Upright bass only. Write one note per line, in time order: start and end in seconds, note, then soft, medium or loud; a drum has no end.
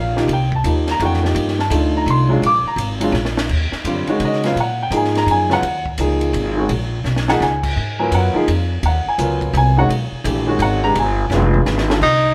0.00 0.27 A#1 medium
0.28 0.63 C2 medium
0.64 0.99 D#2 medium
1.00 1.34 F2 loud
1.35 1.70 G2 loud
1.70 2.05 D2 loud
2.06 2.41 C2 medium
2.42 2.63 A#1 medium
2.64 muted upright bass stroke soft
2.76 3.12 G#1 medium
3.12 3.47 A#1 loud
3.49 3.71 D#2 medium
3.72 muted upright bass stroke soft
3.84 4.06 F#2 medium
4.07 muted upright bass stroke soft
4.20 4.55 C#3 medium
4.56 4.90 A#2 medium
4.91 5.26 G#2 medium
5.26 5.61 F#2 medium
5.62 5.97 D#2 medium
5.98 6.33 C#2 medium
6.33 6.68 G#1 loud
6.69 7.04 A#1 medium
7.04 7.39 B1 medium
7.40 7.75 C#2 medium
7.77 8.11 G#2 medium
8.11 8.33 F#2 medium
8.35 muted upright bass stroke soft
8.48 8.82 F2 medium
8.83 9.04 D#2 loud
9.06 muted upright bass stroke soft
9.18 9.53 C#2 medium
9.53 9.88 C2 loud
9.89 10.10 B1 medium
10.12 muted upright bass stroke soft
10.24 10.58 A#1 loud
10.59 10.94 G#1 loud
10.95 11.29 G1 medium
11.30 11.65 F1 medium
11.66 12.01 G#1 loud
12.01 12.34 C2 medium